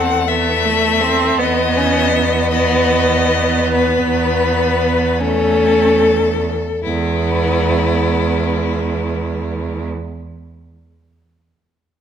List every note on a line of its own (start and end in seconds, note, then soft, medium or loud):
0.00 1.35 E2 medium
0.00 0.28 A3 medium
0.00 0.27 C4 medium
0.00 0.29 F#5 loud
0.28 1.40 A3 loud
0.28 0.67 B3 medium
0.28 1.38 E5 loud
0.65 1.02 A3 loud
1.01 1.40 C4 loud
1.38 6.51 E2 loud
1.38 2.52 B3 loud
1.38 1.78 B3 loud
1.38 2.50 D#5 loud
1.77 2.14 C#4 loud
2.13 3.72 B3 loud
2.51 5.22 B3 loud
2.51 3.71 D#5 loud
3.73 5.21 B3 loud
3.73 5.22 B4 loud
5.19 6.56 A3 loud
5.19 6.55 C#4 loud
5.19 6.83 A4 loud
6.84 9.87 E2 loud
6.84 9.87 G#3 medium
6.84 9.86 B3 loud
6.84 9.86 E4 loud